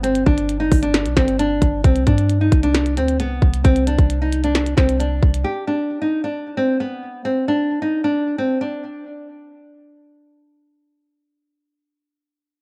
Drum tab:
HH |xx-xx-oxxxxxx-x-|xxxxx-xxxxxxx--x|xxxxx-xxxxxxx--x|----------------|
SD |--------o-o-----|--------o-------|--------o-o-----|----------------|
BD |--o---o---o---o-|o-o---o-------o-|o--o------o---o-|----------------|

HH |----------------|----------------|----------------|
SD |----------------|----------------|----------------|
BD |----------------|----------------|----------------|